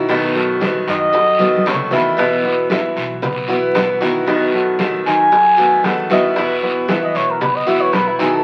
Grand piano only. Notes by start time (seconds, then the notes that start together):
0.10 D#3 D#4 D#5
0.35 F#3 F#4 A4
0.88 D#3 D#4 D#5
1.13 F#3 F#4 A4
1.66 F#3 F#4 A4
1.92 E3 E4 E5
2.45 B3 B4
2.72 E3 E4 E5
3.22 B3 B4
3.49 B3 B4
4.01 D#3 D#4 D#5
4.28 D#3 D#4 D#5
4.54 F#3 F#4 A4
5.06 D#3 D#4 D#5
5.32 F#3 F#4 A4
5.84 F#3 F#4 A4
6.11 E3 E4 E5
6.63 B3 B4
6.89 E3 E4 E5
7.41 B3 B4
7.67 B3 B4
8.19 D#3 D#4 D#5